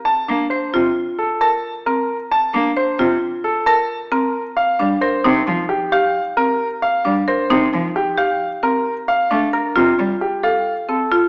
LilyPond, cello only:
\new Staff \with { instrumentName = "Cello" } { \clef bass \time 5/4 \key c \dorian \tempo 4 = 133 r8 bes8 r8 c8 r2. | r8 bes8 r8 c8 r2. | r8 g8 r8 c8 f8 r2 r8 | r8 g8 r8 c8 f8 r2 r8 |
r8 a8 r8 c8 g8 r2 r8 | }